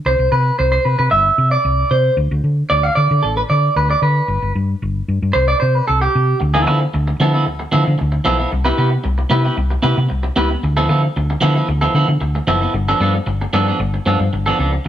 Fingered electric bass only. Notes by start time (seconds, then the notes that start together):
0.06 C2
0.19 C2
0.32 C3
0.60 C2
0.85 C3
0.99 C3
1.11 G1
1.38 C3
1.65 C2
1.91 C3
2.17 D2
2.31 D2
2.44 D3
2.71 D2
2.97 D3
3.11 D3
3.24 A1
3.50 D3
3.76 D2
4.02 D3
4.28 G1
4.42 G1
4.55 G2
4.82 G1
5.08 G2
5.22 G2
5.35 C2
5.62 C3
5.89 C2
6.15 C3
6.41 D2
6.67 D3
6.94 D2
7.20 D3
7.47 D2
7.74 D3
7.87 D3
8.01 D2
8.26 B1
8.52 C2
8.78 C3
9.05 C2
9.31 C3
9.57 C2
9.84 C3
9.98 C3
10.11 C2
10.37 C#2
10.63 D2
10.89 D3
11.17 D2
11.43 D3
11.68 D2
11.95 D3
12.08 D3
12.21 D2
12.47 F#1
12.74 G1
13.00 G2
13.26 G1
13.53 G2
13.80 G1
14.06 G2
14.20 G2
14.33 G1
14.59 C#2